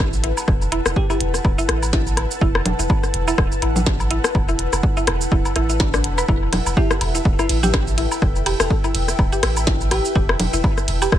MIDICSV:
0, 0, Header, 1, 7, 480
1, 0, Start_track
1, 0, Key_signature, 1, "minor"
1, 0, Tempo, 483871
1, 473, Time_signature, 4, 2, 24, 8
1, 11097, End_track
2, 0, Start_track
2, 0, Title_t, "Synth texture"
2, 0, Program_c, 0, 99
2, 0, Note_on_c, 0, 69, 89
2, 0, Note_on_c, 0, 81, 96
2, 6234, Note_on_c, 0, 76, 96
2, 6261, Note_off_c, 0, 81, 0
2, 11097, Note_off_c, 0, 69, 0
2, 11097, Note_off_c, 0, 76, 0
2, 11097, End_track
3, 0, Start_track
3, 0, Title_t, "Ambient pad"
3, 0, Program_c, 1, 92
3, 0, Note_on_c, 1, 64, 93
3, 0, Note_on_c, 1, 71, 81
3, 0, Note_on_c, 1, 78, 90
3, 6768, Note_on_c, 1, 79, 94
3, 6795, Note_off_c, 1, 78, 0
3, 11097, Note_off_c, 1, 64, 0
3, 11097, Note_off_c, 1, 71, 0
3, 11097, Note_off_c, 1, 79, 0
3, 11097, End_track
4, 0, Start_track
4, 0, Title_t, "FM electric piano"
4, 0, Program_c, 2, 5
4, 955, Note_on_c, 2, 67, 93
4, 1042, Note_off_c, 2, 67, 0
4, 1091, Note_on_c, 2, 67, 79
4, 1157, Note_off_c, 2, 67, 0
4, 6715, Note_on_c, 2, 64, 93
4, 6883, Note_off_c, 2, 64, 0
4, 7332, Note_on_c, 2, 64, 93
4, 7397, Note_off_c, 2, 64, 0
4, 7433, Note_on_c, 2, 64, 76
4, 7520, Note_off_c, 2, 64, 0
4, 8531, Note_on_c, 2, 69, 94
4, 8676, Note_off_c, 2, 69, 0
4, 9834, Note_on_c, 2, 67, 97
4, 10512, Note_off_c, 2, 67, 0
4, 11097, End_track
5, 0, Start_track
5, 0, Title_t, "Synth arpeggio sound"
5, 0, Program_c, 3, 84
5, 234, Note_on_c, 3, 64, 81
5, 301, Note_off_c, 3, 64, 0
5, 713, Note_on_c, 3, 64, 108
5, 781, Note_off_c, 3, 64, 0
5, 1090, Note_on_c, 3, 64, 80
5, 1141, Note_off_c, 3, 64, 0
5, 1570, Note_on_c, 3, 64, 105
5, 1621, Note_off_c, 3, 64, 0
5, 1914, Note_on_c, 3, 64, 88
5, 1981, Note_off_c, 3, 64, 0
5, 2394, Note_on_c, 3, 64, 104
5, 2461, Note_off_c, 3, 64, 0
5, 2769, Note_on_c, 3, 64, 77
5, 2821, Note_off_c, 3, 64, 0
5, 3250, Note_on_c, 3, 64, 101
5, 3301, Note_off_c, 3, 64, 0
5, 3594, Note_on_c, 3, 64, 78
5, 3661, Note_off_c, 3, 64, 0
5, 4074, Note_on_c, 3, 64, 103
5, 4141, Note_off_c, 3, 64, 0
5, 4449, Note_on_c, 3, 64, 83
5, 4501, Note_off_c, 3, 64, 0
5, 4930, Note_on_c, 3, 64, 101
5, 4981, Note_off_c, 3, 64, 0
5, 5274, Note_on_c, 3, 64, 81
5, 5341, Note_off_c, 3, 64, 0
5, 5514, Note_on_c, 3, 64, 82
5, 5615, Note_off_c, 3, 64, 0
5, 5650, Note_on_c, 3, 64, 75
5, 5727, Note_off_c, 3, 64, 0
5, 5754, Note_on_c, 3, 62, 82
5, 5821, Note_off_c, 3, 62, 0
5, 5890, Note_on_c, 3, 62, 75
5, 5941, Note_off_c, 3, 62, 0
5, 6130, Note_on_c, 3, 71, 104
5, 6207, Note_off_c, 3, 71, 0
5, 6234, Note_on_c, 3, 64, 87
5, 6301, Note_off_c, 3, 64, 0
5, 6714, Note_on_c, 3, 67, 100
5, 6781, Note_off_c, 3, 67, 0
5, 7090, Note_on_c, 3, 64, 72
5, 7141, Note_off_c, 3, 64, 0
5, 7570, Note_on_c, 3, 67, 105
5, 7621, Note_off_c, 3, 67, 0
5, 7914, Note_on_c, 3, 64, 81
5, 7981, Note_off_c, 3, 64, 0
5, 8393, Note_on_c, 3, 67, 103
5, 8461, Note_off_c, 3, 67, 0
5, 8770, Note_on_c, 3, 64, 78
5, 8821, Note_off_c, 3, 64, 0
5, 9250, Note_on_c, 3, 67, 104
5, 9301, Note_off_c, 3, 67, 0
5, 9592, Note_on_c, 3, 64, 84
5, 9660, Note_off_c, 3, 64, 0
5, 10073, Note_on_c, 3, 67, 100
5, 10140, Note_off_c, 3, 67, 0
5, 10449, Note_on_c, 3, 64, 77
5, 10501, Note_off_c, 3, 64, 0
5, 10930, Note_on_c, 3, 67, 102
5, 10981, Note_off_c, 3, 67, 0
5, 11097, End_track
6, 0, Start_track
6, 0, Title_t, "Sub bass"
6, 0, Program_c, 4, 38
6, 0, Note_on_c, 4, 33, 83
6, 314, Note_off_c, 4, 33, 0
6, 474, Note_on_c, 4, 28, 98
6, 794, Note_off_c, 4, 28, 0
6, 850, Note_on_c, 4, 28, 84
6, 927, Note_off_c, 4, 28, 0
6, 1193, Note_on_c, 4, 28, 102
6, 1380, Note_off_c, 4, 28, 0
6, 1434, Note_on_c, 4, 26, 103
6, 1535, Note_off_c, 4, 26, 0
6, 1674, Note_on_c, 4, 33, 85
6, 2235, Note_off_c, 4, 33, 0
6, 2394, Note_on_c, 4, 28, 97
6, 2715, Note_off_c, 4, 28, 0
6, 2770, Note_on_c, 4, 28, 87
6, 2847, Note_off_c, 4, 28, 0
6, 3113, Note_on_c, 4, 28, 104
6, 3300, Note_off_c, 4, 28, 0
6, 3354, Note_on_c, 4, 26, 104
6, 3455, Note_off_c, 4, 26, 0
6, 3593, Note_on_c, 4, 33, 83
6, 4154, Note_off_c, 4, 33, 0
6, 4314, Note_on_c, 4, 28, 97
6, 4634, Note_off_c, 4, 28, 0
6, 4689, Note_on_c, 4, 28, 82
6, 4767, Note_off_c, 4, 28, 0
6, 5033, Note_on_c, 4, 28, 101
6, 5220, Note_off_c, 4, 28, 0
6, 5274, Note_on_c, 4, 26, 108
6, 5375, Note_off_c, 4, 26, 0
6, 5513, Note_on_c, 4, 33, 84
6, 5994, Note_on_c, 4, 28, 80
6, 6009, Note_off_c, 4, 33, 0
6, 6181, Note_off_c, 4, 28, 0
6, 6234, Note_on_c, 4, 28, 102
6, 6554, Note_off_c, 4, 28, 0
6, 6610, Note_on_c, 4, 28, 84
6, 6687, Note_off_c, 4, 28, 0
6, 6954, Note_on_c, 4, 28, 104
6, 7141, Note_off_c, 4, 28, 0
6, 7194, Note_on_c, 4, 26, 104
6, 7295, Note_off_c, 4, 26, 0
6, 7435, Note_on_c, 4, 33, 88
6, 7995, Note_off_c, 4, 33, 0
6, 8154, Note_on_c, 4, 28, 96
6, 8474, Note_off_c, 4, 28, 0
6, 8530, Note_on_c, 4, 28, 85
6, 8607, Note_off_c, 4, 28, 0
6, 8874, Note_on_c, 4, 28, 100
6, 9061, Note_off_c, 4, 28, 0
6, 9114, Note_on_c, 4, 26, 104
6, 9215, Note_off_c, 4, 26, 0
6, 9354, Note_on_c, 4, 33, 80
6, 9914, Note_off_c, 4, 33, 0
6, 10073, Note_on_c, 4, 28, 101
6, 10394, Note_off_c, 4, 28, 0
6, 10449, Note_on_c, 4, 28, 85
6, 10527, Note_off_c, 4, 28, 0
6, 10793, Note_on_c, 4, 28, 102
6, 10980, Note_off_c, 4, 28, 0
6, 11033, Note_on_c, 4, 26, 102
6, 11097, Note_off_c, 4, 26, 0
6, 11097, End_track
7, 0, Start_track
7, 0, Title_t, "Drums"
7, 131, Note_on_c, 9, 69, 42
7, 230, Note_off_c, 9, 69, 0
7, 235, Note_on_c, 9, 42, 96
7, 334, Note_off_c, 9, 42, 0
7, 370, Note_on_c, 9, 69, 57
7, 370, Note_on_c, 9, 77, 47
7, 469, Note_off_c, 9, 69, 0
7, 469, Note_off_c, 9, 77, 0
7, 474, Note_on_c, 9, 36, 125
7, 474, Note_on_c, 9, 37, 43
7, 573, Note_off_c, 9, 36, 0
7, 573, Note_off_c, 9, 37, 0
7, 611, Note_on_c, 9, 69, 29
7, 710, Note_off_c, 9, 69, 0
7, 714, Note_on_c, 9, 77, 48
7, 715, Note_on_c, 9, 42, 100
7, 814, Note_off_c, 9, 42, 0
7, 814, Note_off_c, 9, 77, 0
7, 850, Note_on_c, 9, 37, 85
7, 851, Note_on_c, 9, 69, 58
7, 949, Note_off_c, 9, 37, 0
7, 950, Note_off_c, 9, 69, 0
7, 954, Note_on_c, 9, 36, 120
7, 1053, Note_off_c, 9, 36, 0
7, 1090, Note_on_c, 9, 77, 46
7, 1091, Note_on_c, 9, 69, 30
7, 1189, Note_off_c, 9, 77, 0
7, 1191, Note_off_c, 9, 69, 0
7, 1196, Note_on_c, 9, 42, 100
7, 1295, Note_off_c, 9, 42, 0
7, 1330, Note_on_c, 9, 37, 38
7, 1331, Note_on_c, 9, 69, 52
7, 1429, Note_off_c, 9, 37, 0
7, 1431, Note_off_c, 9, 69, 0
7, 1433, Note_on_c, 9, 77, 49
7, 1435, Note_on_c, 9, 36, 120
7, 1533, Note_off_c, 9, 77, 0
7, 1534, Note_off_c, 9, 36, 0
7, 1572, Note_on_c, 9, 69, 45
7, 1671, Note_off_c, 9, 69, 0
7, 1674, Note_on_c, 9, 37, 78
7, 1676, Note_on_c, 9, 42, 100
7, 1773, Note_off_c, 9, 37, 0
7, 1775, Note_off_c, 9, 42, 0
7, 1811, Note_on_c, 9, 77, 47
7, 1812, Note_on_c, 9, 69, 56
7, 1910, Note_off_c, 9, 77, 0
7, 1911, Note_off_c, 9, 69, 0
7, 1914, Note_on_c, 9, 36, 127
7, 1915, Note_on_c, 9, 38, 115
7, 2013, Note_off_c, 9, 36, 0
7, 2014, Note_off_c, 9, 38, 0
7, 2051, Note_on_c, 9, 69, 42
7, 2150, Note_off_c, 9, 69, 0
7, 2153, Note_on_c, 9, 37, 41
7, 2153, Note_on_c, 9, 77, 48
7, 2155, Note_on_c, 9, 42, 95
7, 2252, Note_off_c, 9, 37, 0
7, 2252, Note_off_c, 9, 77, 0
7, 2254, Note_off_c, 9, 42, 0
7, 2291, Note_on_c, 9, 69, 57
7, 2390, Note_off_c, 9, 69, 0
7, 2394, Note_on_c, 9, 36, 127
7, 2493, Note_off_c, 9, 36, 0
7, 2530, Note_on_c, 9, 37, 77
7, 2530, Note_on_c, 9, 77, 45
7, 2630, Note_off_c, 9, 37, 0
7, 2630, Note_off_c, 9, 77, 0
7, 2634, Note_on_c, 9, 64, 91
7, 2635, Note_on_c, 9, 42, 103
7, 2733, Note_off_c, 9, 64, 0
7, 2734, Note_off_c, 9, 42, 0
7, 2771, Note_on_c, 9, 69, 54
7, 2870, Note_off_c, 9, 69, 0
7, 2874, Note_on_c, 9, 36, 127
7, 2874, Note_on_c, 9, 77, 49
7, 2973, Note_off_c, 9, 36, 0
7, 2974, Note_off_c, 9, 77, 0
7, 3010, Note_on_c, 9, 37, 37
7, 3010, Note_on_c, 9, 69, 29
7, 3109, Note_off_c, 9, 69, 0
7, 3110, Note_off_c, 9, 37, 0
7, 3114, Note_on_c, 9, 42, 99
7, 3213, Note_off_c, 9, 42, 0
7, 3250, Note_on_c, 9, 69, 49
7, 3250, Note_on_c, 9, 77, 46
7, 3349, Note_off_c, 9, 69, 0
7, 3349, Note_off_c, 9, 77, 0
7, 3354, Note_on_c, 9, 36, 127
7, 3354, Note_on_c, 9, 37, 82
7, 3453, Note_off_c, 9, 36, 0
7, 3453, Note_off_c, 9, 37, 0
7, 3490, Note_on_c, 9, 69, 42
7, 3589, Note_off_c, 9, 69, 0
7, 3593, Note_on_c, 9, 42, 98
7, 3593, Note_on_c, 9, 77, 48
7, 3692, Note_off_c, 9, 42, 0
7, 3693, Note_off_c, 9, 77, 0
7, 3729, Note_on_c, 9, 64, 88
7, 3730, Note_on_c, 9, 69, 50
7, 3828, Note_off_c, 9, 64, 0
7, 3829, Note_off_c, 9, 69, 0
7, 3833, Note_on_c, 9, 37, 39
7, 3833, Note_on_c, 9, 38, 113
7, 3834, Note_on_c, 9, 36, 123
7, 3932, Note_off_c, 9, 37, 0
7, 3932, Note_off_c, 9, 38, 0
7, 3933, Note_off_c, 9, 36, 0
7, 3969, Note_on_c, 9, 69, 42
7, 3969, Note_on_c, 9, 77, 50
7, 4068, Note_off_c, 9, 69, 0
7, 4068, Note_off_c, 9, 77, 0
7, 4073, Note_on_c, 9, 42, 97
7, 4172, Note_off_c, 9, 42, 0
7, 4209, Note_on_c, 9, 37, 81
7, 4209, Note_on_c, 9, 69, 54
7, 4308, Note_off_c, 9, 37, 0
7, 4308, Note_off_c, 9, 69, 0
7, 4314, Note_on_c, 9, 36, 125
7, 4314, Note_on_c, 9, 77, 51
7, 4413, Note_off_c, 9, 36, 0
7, 4413, Note_off_c, 9, 77, 0
7, 4449, Note_on_c, 9, 69, 27
7, 4548, Note_off_c, 9, 69, 0
7, 4552, Note_on_c, 9, 42, 97
7, 4652, Note_off_c, 9, 42, 0
7, 4689, Note_on_c, 9, 69, 54
7, 4691, Note_on_c, 9, 37, 41
7, 4691, Note_on_c, 9, 77, 47
7, 4788, Note_off_c, 9, 69, 0
7, 4790, Note_off_c, 9, 37, 0
7, 4790, Note_off_c, 9, 77, 0
7, 4794, Note_on_c, 9, 36, 122
7, 4893, Note_off_c, 9, 36, 0
7, 4929, Note_on_c, 9, 69, 29
7, 5028, Note_off_c, 9, 69, 0
7, 5032, Note_on_c, 9, 42, 100
7, 5035, Note_on_c, 9, 37, 76
7, 5035, Note_on_c, 9, 77, 47
7, 5132, Note_off_c, 9, 42, 0
7, 5134, Note_off_c, 9, 37, 0
7, 5134, Note_off_c, 9, 77, 0
7, 5169, Note_on_c, 9, 69, 52
7, 5268, Note_off_c, 9, 69, 0
7, 5274, Note_on_c, 9, 36, 123
7, 5373, Note_off_c, 9, 36, 0
7, 5409, Note_on_c, 9, 69, 38
7, 5410, Note_on_c, 9, 77, 46
7, 5508, Note_off_c, 9, 69, 0
7, 5509, Note_off_c, 9, 77, 0
7, 5512, Note_on_c, 9, 42, 99
7, 5515, Note_on_c, 9, 37, 38
7, 5611, Note_off_c, 9, 42, 0
7, 5614, Note_off_c, 9, 37, 0
7, 5649, Note_on_c, 9, 69, 48
7, 5748, Note_off_c, 9, 69, 0
7, 5753, Note_on_c, 9, 38, 105
7, 5754, Note_on_c, 9, 36, 127
7, 5754, Note_on_c, 9, 77, 47
7, 5852, Note_off_c, 9, 38, 0
7, 5853, Note_off_c, 9, 36, 0
7, 5854, Note_off_c, 9, 77, 0
7, 5889, Note_on_c, 9, 69, 40
7, 5891, Note_on_c, 9, 37, 82
7, 5989, Note_off_c, 9, 69, 0
7, 5990, Note_off_c, 9, 37, 0
7, 5994, Note_on_c, 9, 42, 97
7, 6093, Note_off_c, 9, 42, 0
7, 6130, Note_on_c, 9, 69, 50
7, 6130, Note_on_c, 9, 77, 47
7, 6229, Note_off_c, 9, 69, 0
7, 6230, Note_off_c, 9, 77, 0
7, 6234, Note_on_c, 9, 36, 114
7, 6235, Note_on_c, 9, 77, 46
7, 6333, Note_off_c, 9, 36, 0
7, 6334, Note_off_c, 9, 77, 0
7, 6474, Note_on_c, 9, 42, 96
7, 6474, Note_on_c, 9, 51, 83
7, 6475, Note_on_c, 9, 37, 40
7, 6475, Note_on_c, 9, 64, 79
7, 6573, Note_off_c, 9, 42, 0
7, 6573, Note_off_c, 9, 51, 0
7, 6574, Note_off_c, 9, 37, 0
7, 6574, Note_off_c, 9, 64, 0
7, 6610, Note_on_c, 9, 69, 52
7, 6611, Note_on_c, 9, 77, 46
7, 6709, Note_off_c, 9, 69, 0
7, 6710, Note_off_c, 9, 77, 0
7, 6714, Note_on_c, 9, 36, 119
7, 6813, Note_off_c, 9, 36, 0
7, 6851, Note_on_c, 9, 37, 74
7, 6851, Note_on_c, 9, 69, 30
7, 6950, Note_off_c, 9, 69, 0
7, 6951, Note_off_c, 9, 37, 0
7, 6955, Note_on_c, 9, 42, 97
7, 6955, Note_on_c, 9, 51, 85
7, 6955, Note_on_c, 9, 77, 45
7, 7054, Note_off_c, 9, 42, 0
7, 7054, Note_off_c, 9, 51, 0
7, 7054, Note_off_c, 9, 77, 0
7, 7091, Note_on_c, 9, 69, 51
7, 7190, Note_off_c, 9, 69, 0
7, 7194, Note_on_c, 9, 36, 125
7, 7293, Note_off_c, 9, 36, 0
7, 7331, Note_on_c, 9, 69, 40
7, 7332, Note_on_c, 9, 37, 39
7, 7332, Note_on_c, 9, 77, 45
7, 7430, Note_off_c, 9, 69, 0
7, 7431, Note_off_c, 9, 37, 0
7, 7431, Note_off_c, 9, 77, 0
7, 7434, Note_on_c, 9, 42, 94
7, 7434, Note_on_c, 9, 51, 89
7, 7534, Note_off_c, 9, 42, 0
7, 7534, Note_off_c, 9, 51, 0
7, 7570, Note_on_c, 9, 64, 79
7, 7570, Note_on_c, 9, 69, 49
7, 7670, Note_off_c, 9, 64, 0
7, 7670, Note_off_c, 9, 69, 0
7, 7674, Note_on_c, 9, 36, 121
7, 7674, Note_on_c, 9, 37, 81
7, 7674, Note_on_c, 9, 77, 43
7, 7675, Note_on_c, 9, 38, 107
7, 7773, Note_off_c, 9, 36, 0
7, 7773, Note_off_c, 9, 37, 0
7, 7773, Note_off_c, 9, 77, 0
7, 7774, Note_off_c, 9, 38, 0
7, 7810, Note_on_c, 9, 69, 40
7, 7910, Note_off_c, 9, 69, 0
7, 7914, Note_on_c, 9, 42, 94
7, 7914, Note_on_c, 9, 51, 80
7, 8013, Note_off_c, 9, 42, 0
7, 8013, Note_off_c, 9, 51, 0
7, 8050, Note_on_c, 9, 77, 46
7, 8051, Note_on_c, 9, 69, 52
7, 8149, Note_off_c, 9, 77, 0
7, 8150, Note_off_c, 9, 69, 0
7, 8154, Note_on_c, 9, 36, 113
7, 8155, Note_on_c, 9, 37, 41
7, 8253, Note_off_c, 9, 36, 0
7, 8254, Note_off_c, 9, 37, 0
7, 8290, Note_on_c, 9, 69, 28
7, 8389, Note_off_c, 9, 69, 0
7, 8394, Note_on_c, 9, 42, 91
7, 8394, Note_on_c, 9, 51, 92
7, 8395, Note_on_c, 9, 77, 45
7, 8493, Note_off_c, 9, 42, 0
7, 8493, Note_off_c, 9, 51, 0
7, 8494, Note_off_c, 9, 77, 0
7, 8530, Note_on_c, 9, 37, 83
7, 8530, Note_on_c, 9, 69, 56
7, 8629, Note_off_c, 9, 69, 0
7, 8630, Note_off_c, 9, 37, 0
7, 8634, Note_on_c, 9, 36, 120
7, 8733, Note_off_c, 9, 36, 0
7, 8770, Note_on_c, 9, 69, 30
7, 8771, Note_on_c, 9, 77, 44
7, 8869, Note_off_c, 9, 69, 0
7, 8870, Note_off_c, 9, 77, 0
7, 8874, Note_on_c, 9, 42, 88
7, 8874, Note_on_c, 9, 51, 91
7, 8974, Note_off_c, 9, 42, 0
7, 8974, Note_off_c, 9, 51, 0
7, 9010, Note_on_c, 9, 69, 52
7, 9011, Note_on_c, 9, 37, 38
7, 9110, Note_off_c, 9, 37, 0
7, 9110, Note_off_c, 9, 69, 0
7, 9114, Note_on_c, 9, 36, 107
7, 9114, Note_on_c, 9, 77, 48
7, 9213, Note_off_c, 9, 36, 0
7, 9214, Note_off_c, 9, 77, 0
7, 9250, Note_on_c, 9, 69, 42
7, 9349, Note_off_c, 9, 69, 0
7, 9354, Note_on_c, 9, 37, 78
7, 9354, Note_on_c, 9, 42, 96
7, 9354, Note_on_c, 9, 51, 90
7, 9453, Note_off_c, 9, 42, 0
7, 9453, Note_off_c, 9, 51, 0
7, 9454, Note_off_c, 9, 37, 0
7, 9489, Note_on_c, 9, 69, 53
7, 9491, Note_on_c, 9, 77, 44
7, 9588, Note_off_c, 9, 69, 0
7, 9590, Note_off_c, 9, 77, 0
7, 9593, Note_on_c, 9, 38, 107
7, 9594, Note_on_c, 9, 36, 117
7, 9692, Note_off_c, 9, 38, 0
7, 9693, Note_off_c, 9, 36, 0
7, 9730, Note_on_c, 9, 69, 40
7, 9829, Note_off_c, 9, 69, 0
7, 9833, Note_on_c, 9, 42, 89
7, 9833, Note_on_c, 9, 51, 91
7, 9834, Note_on_c, 9, 37, 41
7, 9834, Note_on_c, 9, 77, 42
7, 9932, Note_off_c, 9, 42, 0
7, 9932, Note_off_c, 9, 51, 0
7, 9933, Note_off_c, 9, 37, 0
7, 9933, Note_off_c, 9, 77, 0
7, 9969, Note_on_c, 9, 69, 54
7, 10068, Note_off_c, 9, 69, 0
7, 10074, Note_on_c, 9, 36, 118
7, 10173, Note_off_c, 9, 36, 0
7, 10210, Note_on_c, 9, 37, 84
7, 10210, Note_on_c, 9, 77, 43
7, 10309, Note_off_c, 9, 37, 0
7, 10309, Note_off_c, 9, 77, 0
7, 10313, Note_on_c, 9, 42, 88
7, 10313, Note_on_c, 9, 51, 89
7, 10314, Note_on_c, 9, 64, 84
7, 10412, Note_off_c, 9, 42, 0
7, 10412, Note_off_c, 9, 51, 0
7, 10413, Note_off_c, 9, 64, 0
7, 10449, Note_on_c, 9, 69, 56
7, 10548, Note_off_c, 9, 69, 0
7, 10553, Note_on_c, 9, 36, 113
7, 10554, Note_on_c, 9, 77, 44
7, 10653, Note_off_c, 9, 36, 0
7, 10653, Note_off_c, 9, 77, 0
7, 10689, Note_on_c, 9, 69, 30
7, 10690, Note_on_c, 9, 37, 41
7, 10788, Note_off_c, 9, 69, 0
7, 10789, Note_off_c, 9, 37, 0
7, 10793, Note_on_c, 9, 42, 91
7, 10793, Note_on_c, 9, 51, 88
7, 10892, Note_off_c, 9, 42, 0
7, 10892, Note_off_c, 9, 51, 0
7, 10929, Note_on_c, 9, 69, 53
7, 10930, Note_on_c, 9, 77, 41
7, 11028, Note_off_c, 9, 69, 0
7, 11029, Note_off_c, 9, 77, 0
7, 11034, Note_on_c, 9, 36, 107
7, 11034, Note_on_c, 9, 37, 86
7, 11097, Note_off_c, 9, 36, 0
7, 11097, Note_off_c, 9, 37, 0
7, 11097, End_track
0, 0, End_of_file